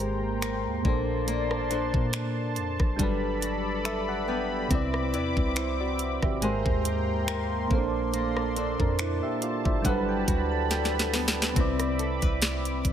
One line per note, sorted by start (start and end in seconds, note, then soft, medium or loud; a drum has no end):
0.00 0.67 G#1 loud
0.00 0.84 G#2 medium
0.00 0.85 G#3 medium
0.00 0.94 G#3 medium
0.00 2.96 A#3 medium
0.00 0.45 C4 medium
0.00 0.85 G4 medium
0.00 0.94 G4 medium
0.00 0.86 A#4 medium
0.00 0.86 C5 medium
0.00 0.84 G5 medium
0.00 0.84 A#5 medium
0.00 2.96 C6 medium
0.00 closed hi-hat medium
0.42 1.71 A#4 medium
0.42 finger snap loud
0.42 closed hi-hat medium
0.65 0.84 D#2 loud
0.82 1.53 A#1 loud
0.82 2.94 A#2 medium
0.82 2.95 A#3 medium
0.82 1.27 A#3 medium
0.82 2.96 D4 medium
0.82 2.97 D5 medium
0.82 4.67 A5 medium
0.82 kick loud
0.87 2.96 A4 medium
0.87 2.97 C5 medium
1.28 3.09 A#3 medium
1.28 closed hi-hat medium
1.51 1.72 A1 medium
1.51 cross-stick medium
1.71 1.93 A#1 medium
1.71 2.13 D4 medium
1.71 3.09 A4 medium
1.71 3.09 C5 medium
1.71 closed hi-hat medium
1.94 2.58 A#2 loud
1.94 kick medium
2.13 3.42 D4 medium
2.13 finger snap loud
2.13 closed hi-hat medium
2.56 2.78 F2 medium
2.56 closed hi-hat medium
2.80 2.99 A#1 loud
2.80 kick medium
2.80 cross-stick medium
2.96 4.67 G1 loud
2.96 4.68 F#3 medium
2.96 4.66 G3 medium
2.96 6.42 G3 medium
2.96 4.67 D4 medium
2.96 4.69 A4 medium
2.96 4.69 D5 medium
2.96 6.39 B5 medium
2.96 kick medium
2.96 closed hi-hat medium
3.02 4.68 A4 medium
3.02 4.69 B4 medium
3.42 4.80 F#4 medium
3.42 closed hi-hat medium
3.85 4.80 A4 medium
3.85 4.07 E5 medium
3.85 finger snap loud
3.85 closed hi-hat medium
4.09 4.27 F#5 medium
4.28 4.70 B3 medium
4.28 4.68 G5 medium
4.68 5.15 C2 loud
4.68 6.37 C3 medium
4.68 6.38 C4 medium
4.68 7.31 C4 medium
4.68 6.40 C4 medium
4.68 5.55 E4 medium
4.68 6.40 E5 medium
4.68 6.40 D6 loud
4.68 kick loud
4.68 closed hi-hat medium
4.73 5.56 B4 medium
4.73 5.57 D5 medium
4.94 cross-stick medium
5.13 5.36 E2 medium
5.13 5.55 E4 medium
5.13 6.52 B4 medium
5.13 6.52 D5 medium
5.13 closed hi-hat medium
5.37 6.19 C2 loud
5.37 kick medium
5.56 6.51 E4 medium
5.56 5.79 E4 medium
5.56 5.79 C5 medium
5.56 finger snap loud
5.56 closed hi-hat medium
5.80 6.21 F#4 medium
5.80 6.21 D5 medium
5.99 closed hi-hat medium
6.22 6.64 G#1 loud
6.22 6.42 G4 medium
6.22 6.64 E5 medium
6.22 kick medium
6.22 cross-stick medium
6.41 7.70 G#2 medium
6.41 7.71 G#3 medium
6.41 7.80 G#3 medium
6.41 9.81 A#3 medium
6.41 7.71 G4 medium
6.41 7.71 A#4 medium
6.41 7.72 C5 medium
6.41 7.69 G5 medium
6.41 7.69 A#5 medium
6.41 9.81 C6 medium
6.41 closed hi-hat medium
6.66 7.67 D#2 loud
6.66 kick loud
6.85 7.80 G4 medium
6.85 closed hi-hat medium
7.28 8.57 A#4 medium
7.28 finger snap loud
7.28 closed hi-hat medium
7.68 8.76 A#1 loud
7.68 9.79 A#2 medium
7.68 9.80 A#3 medium
7.68 8.12 A#3 medium
7.68 7.78 C4 medium
7.68 9.83 D5 medium
7.68 11.52 A5 medium
7.68 kick loud
7.73 8.56 A4 medium
7.73 8.57 C5 medium
7.78 8.58 D4 medium
8.13 9.94 A#3 medium
8.13 closed hi-hat medium
8.37 cross-stick medium
8.56 8.99 D4 medium
8.56 9.95 A4 medium
8.56 9.95 C5 medium
8.56 closed hi-hat medium
8.80 9.21 F2 loud
8.80 8.99 D4 medium
8.80 8.99 A#4 medium
8.80 kick medium
8.99 10.27 D4 medium
8.99 9.22 E4 medium
8.99 finger snap loud
8.99 closed hi-hat medium
9.23 9.42 G4 medium
9.23 9.41 E5 medium
9.42 9.65 F4 medium
9.42 9.64 D5 medium
9.42 closed hi-hat medium
9.65 10.25 G1 loud
9.65 10.07 E4 medium
9.65 10.06 C5 medium
9.65 9.84 E5 medium
9.65 kick medium
9.82 11.53 F#3 medium
9.82 11.51 G3 medium
9.82 12.02 G3 medium
9.82 11.52 D4 medium
9.82 11.55 A4 medium
9.82 11.55 D5 medium
9.82 10.07 F#5 medium
9.82 11.55 B5 medium
9.82 kick medium
9.82 closed hi-hat medium
9.87 11.54 A4 medium
9.87 11.55 B4 medium
10.09 10.48 G5 medium
10.28 11.52 D2 loud
10.28 11.66 F#4 medium
10.28 kick medium
10.28 closed hi-hat medium
10.52 10.70 A5 medium
10.71 11.66 A4 medium
10.71 10.92 G5 medium
10.71 snare medium
10.71 closed hi-hat medium
10.85 snare medium
10.94 11.53 B5 medium
10.99 snare medium
11.13 11.56 B3 medium
11.13 snare medium
11.13 open hi-hat medium
11.28 snare loud
11.42 snare medium
11.54 12.20 C2 loud
11.54 12.93 C3 medium
11.54 12.93 C4 medium
11.54 12.93 E4 medium
11.54 12.93 E5 medium
11.54 12.93 B5 medium
11.54 12.93 D6 medium
11.54 kick loud
11.54 closed hi-hat medium
11.59 12.93 B4 medium
11.59 12.93 D5 medium
11.80 cross-stick medium
11.80 closed hi-hat medium
11.99 12.22 A4 medium
11.99 closed hi-hat medium
12.22 12.83 C2 loud
12.22 12.93 B4 medium
12.22 kick medium
12.22 closed hi-hat medium
12.42 snare loud
12.42 closed hi-hat medium
12.65 closed hi-hat medium
12.85 12.93 G#1 loud
12.85 kick medium
12.85 closed hi-hat medium